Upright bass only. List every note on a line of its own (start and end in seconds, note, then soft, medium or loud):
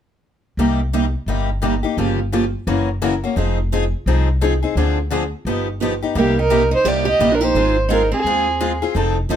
0.57 1.14 C2 medium
1.26 1.83 G1 medium
1.97 2.53 G1 medium
2.67 3.23 F#1 medium
3.36 3.92 F1 medium
4.06 4.62 C2 medium
4.76 5.32 D2 medium
5.45 6.01 G1 medium
6.15 6.71 C2 medium
6.85 7.15 C2 medium
7.19 7.50 A#1 medium
7.55 8.11 G#1 medium
8.24 8.81 D#2 medium
8.95 9.23 F1 medium
9.30 9.36 C2 medium